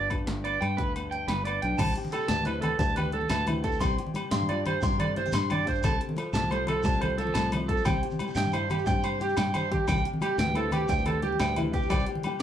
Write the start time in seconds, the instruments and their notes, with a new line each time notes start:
Already playing: fingered electric bass G1, nylon-string guitar G2 B3 D4
0.10 nylon-string guitar D4, kick, closed hi-hat, low agogo
0.27 fingered electric bass G1, nylon-string guitar G2, muted clean electric guitar stroke, snare, closed hi-hat
0.44 nylon-string guitar B3, clean electric guitar D5, closed hi-hat, low agogo
0.61 fingered electric bass G2, nylon-string guitar D4, clean electric guitar G5, snare, closed hi-hat, low agogo
0.77 fingered electric bass D2, nylon-string guitar G2, clean electric guitar B4, kick, closed hi-hat
0.96 nylon-string guitar B3, closed hi-hat, low agogo
1.11 nylon-string guitar D4, clean electric guitar G5, closed hi-hat
1.28 fingered electric bass G1, nylon-string guitar G2, clean electric guitar B4, snare, closed hi-hat, low agogo
1.45 nylon-string guitar B3, clean electric guitar D5, closed hi-hat, low agogo
1.62 fingered electric bass B1, nylon-string guitar D4, clean electric guitar G5, closed hi-hat
1.78 fingered electric bass C2, nylon-string guitar C3 G4, clean electric guitar A5, kick, closed hi-hat, crash, high conga, low conga, low agogo, shekere
1.87 shekere
1.96 nylon-string guitar G4, closed hi-hat
2.05 low conga
2.12 nylon-string guitar G3 G4, clean electric guitar A4, closed hi-hat, low agogo, shekere
2.28 fingered electric bass D2, nylon-string guitar B3, clean electric guitar A5, snare, closed hi-hat, shekere
2.38 low conga
2.45 nylon-string guitar C3 E4, clean electric guitar B4, closed hi-hat, high conga, low agogo
2.61 nylon-string guitar G4, clean electric guitar A4, closed hi-hat, low conga, low agogo
2.79 fingered electric bass D2, nylon-string guitar G4, clean electric guitar A5, muted nylon-string guitar stroke, kick, closed hi-hat, high conga, shekere
2.88 low conga, shekere
2.96 nylon-string guitar G4, clean electric guitar B4, closed hi-hat, low conga, low agogo
3.06 low conga
3.12 nylon-string guitar G3, clean electric guitar A4, closed hi-hat, high conga, low conga
3.21 low conga
3.30 fingered electric bass D2, nylon-string guitar B3, clean electric guitar A5, snare, closed hi-hat, low conga, low agogo, shekere
3.46 nylon-string guitar C3 E4, closed hi-hat, high conga, low conga, low agogo
3.64 clean electric guitar A4, muted nylon-string guitar stroke, kick, closed hi-hat, shekere
3.72 shekere
3.80 fingered electric bass C2, nylon-string guitar C3 G4, clean electric guitar C6, kick, closed hi-hat, high conga, low conga, low agogo, shekere
3.98 nylon-string guitar G4, closed hi-hat
4.07 low conga
4.14 nylon-string guitar G3 G4, closed hi-hat, high conga, low agogo, shekere
4.31 fingered electric bass G2, nylon-string guitar D4, clean electric guitar C6, snare, closed hi-hat, shekere
4.41 low conga
4.49 nylon-string guitar G2 F4, clean electric guitar D5, closed hi-hat, high conga, low agogo
4.66 nylon-string guitar G4, clean electric guitar C5, closed hi-hat, low conga, low agogo
4.82 fingered electric bass G2, nylon-string guitar C3 G4, clean electric guitar C6, kick, closed hi-hat, high conga, shekere
4.92 low conga, shekere
4.99 nylon-string guitar A4, clean electric guitar D5, closed hi-hat, low conga, low agogo
5.08 low conga
5.16 nylon-string guitar G3 E4, clean electric guitar C5, closed hi-hat, high conga, low conga
5.26 nylon-string guitar G4, low conga
5.32 fingered electric bass G2, nylon-string guitar D4, clean electric guitar C6, snare, closed hi-hat, low conga, low agogo, shekere
5.50 nylon-string guitar G2 G4, clean electric guitar D5, closed hi-hat, high conga, low conga, low agogo
5.67 nylon-string guitar G4, clean electric guitar C5, kick, closed hi-hat, shekere
5.74 shekere
5.83 fingered electric bass C2, nylon-string guitar C3 A4, clean electric guitar A5, kick, closed hi-hat, high conga, low conga, low agogo, shekere
6.00 nylon-string guitar A4, closed hi-hat
6.09 low conga
6.16 nylon-string guitar F3 A4, closed hi-hat, high conga, low agogo, shekere
6.33 fingered electric bass C2, nylon-string guitar A3, clean electric guitar A5, snare, closed hi-hat, shekere
6.42 low conga
6.50 nylon-string guitar C3 A4, clean electric guitar C5, closed hi-hat, high conga, low agogo
6.67 clean electric guitar A4, nylon-string guitar A4, closed hi-hat, low conga, low agogo
6.83 fingered electric bass C2, nylon-string guitar C3, clean electric guitar A5, kick, closed hi-hat, high conga, shekere
6.87 nylon-string guitar A4
6.93 low conga, shekere
7.01 nylon-string guitar A4, clean electric guitar C5, closed hi-hat, low conga, low agogo
7.10 low conga
7.18 nylon-string guitar F3 A4, clean electric guitar A4, closed hi-hat, high conga, low conga
7.27 low conga
7.34 fingered electric bass C2, nylon-string guitar A3, clean electric guitar A5, snare, closed hi-hat, low conga, low agogo, shekere
7.52 nylon-string guitar C3, closed hi-hat, high conga, low conga, low agogo
7.68 clean electric guitar A4, nylon-string guitar A4, kick, closed hi-hat, shekere
7.77 shekere
7.85 fingered electric bass C2, nylon-string guitar C3 G4, clean electric guitar G5, kick, closed hi-hat, high conga, low conga, low agogo, shekere
8.03 nylon-string guitar G4, closed hi-hat
8.10 low conga, shekere
8.19 nylon-string guitar G3, closed hi-hat, high conga, low agogo
8.27 nylon-string guitar G4, low conga, shekere
8.35 fingered electric bass G2, nylon-string guitar D4, clean electric guitar G5, snare, closed hi-hat, low conga, shekere
8.45 low conga
8.52 nylon-string guitar G2 E4, clean electric guitar C5, closed hi-hat, high conga, low conga, low agogo, shekere
8.62 low conga
8.69 clean electric guitar G4, nylon-string guitar G4, closed hi-hat, low conga, low agogo, shekere
8.78 shekere
8.86 fingered electric bass G2, nylon-string guitar C3 G4, clean electric guitar G5, kick, closed hi-hat, high conga, shekere
9.04 nylon-string guitar G4, clean electric guitar C5, closed hi-hat, high conga, low agogo
9.20 nylon-string guitar G3 G4, clean electric guitar G4, closed hi-hat, high conga, shekere
9.29 shekere
9.37 fingered electric bass G2, clean electric guitar G5, muted nylon-string guitar stroke, snare, closed hi-hat, high conga, low agogo, shekere
9.54 nylon-string guitar G2 G4, clean electric guitar C5, closed hi-hat, low conga, low agogo, shekere
9.71 nylon-string guitar G4, clean electric guitar G4, kick, closed hi-hat, low conga
9.88 fingered electric bass C2, nylon-string guitar C3 G4, clean electric guitar G5, kick, closed hi-hat, high conga, low conga, low agogo, shekere
10.05 nylon-string guitar G4, closed hi-hat
10.14 low conga
10.21 nylon-string guitar G3 G4, clean electric guitar G4, closed hi-hat, high conga, low agogo, shekere
10.38 fingered electric bass D2, nylon-string guitar B3, clean electric guitar G5, snare, closed hi-hat, shekere
10.46 low conga
10.54 nylon-string guitar C3 E4, clean electric guitar A4, closed hi-hat, high conga, low agogo
10.72 nylon-string guitar G4, clean electric guitar G4, closed hi-hat, low conga, low agogo
10.88 fingered electric bass D2, nylon-string guitar C3 G4, clean electric guitar G5, kick, closed hi-hat, high conga, shekere
10.97 low conga, shekere
11.06 nylon-string guitar G4, clean electric guitar A4, closed hi-hat, low conga, low agogo
11.15 low conga
11.22 nylon-string guitar G3 G4, clean electric guitar G4, closed hi-hat, high conga, low conga
11.32 low conga
11.40 fingered electric bass D2, nylon-string guitar B3, clean electric guitar G5, snare, closed hi-hat, low agogo, shekere
11.56 nylon-string guitar C3 E4, closed hi-hat, high conga, low conga, low agogo
11.73 clean electric guitar G4, nylon-string guitar G4, kick, closed hi-hat, shekere
11.82 shekere
11.90 fingered electric bass C2, nylon-string guitar C3 G4, clean electric guitar D5, kick, closed hi-hat, high conga, low conga, low agogo, shekere
12.06 nylon-string guitar G4, closed hi-hat
12.15 low conga
12.23 nylon-string guitar G3 G4, closed hi-hat, high conga, low agogo, shekere